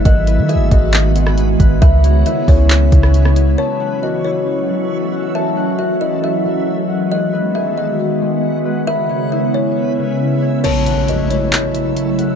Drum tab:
CC |----------------|----------------|----------------|----------------|
HH |x-x-x-x-x-x-x-x-|x-x-x-o-x-x-x-x-|----------------|----------------|
CP |--------x-------|--------x-------|----------------|----------------|
SD |-----------r----|-----------r-r--|----------------|----------------|
BD |o-----o-------o-|o-----o---o-----|----------------|----------------|

CC |----------------|----------------|x---------------|
HH |----------------|----------------|x-x-x-x-x-x-x-x-|
CP |----------------|----------------|--------x-------|
SD |----------------|----------------|----------------|
BD |----------------|----------------|----------------|